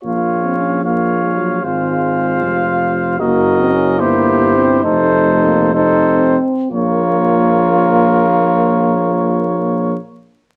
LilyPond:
<<
  \new Staff \with { instrumentName = "Cornet" } { \time 6/8 \key bes \minor \tempo 4. = 69 f''4. f''4. | f''2. | ees''4. c''4. | c''4. c''4 r8 |
des''2.~ | des''2. | }
  \new Staff \with { instrumentName = "Trumpet" } { \time 6/8 \key bes \minor des''4. des''4. | c''2. | bes'4. g'4. | a'4. a'4 r8 |
bes'2.~ | bes'2. | }
  \new Staff \with { instrumentName = "French horn" } { \time 6/8 \key bes \minor f'4. f'4. | f'2. | ges'4. e'4. | ees'4. ees'4 r8 |
f'2.~ | f'2. | }
  \new Staff \with { instrumentName = "Euphonium" } { \time 6/8 \key bes \minor bes8. c'16 des'8 bes8. aes16 ges8 | aes2~ aes8 r8 | bes8. c'16 des'8 bes4 c'8 | a4 bes8 c'4. |
bes2.~ | bes2. | }
  \new Staff \with { instrumentName = "Tuba" } { \clef bass \time 6/8 \key bes \minor bes,,2. | aes,,4. f,,4. | ges,,4. g,,4. | f,,2~ f,,8 r8 |
bes,,2.~ | bes,,2. | }
>>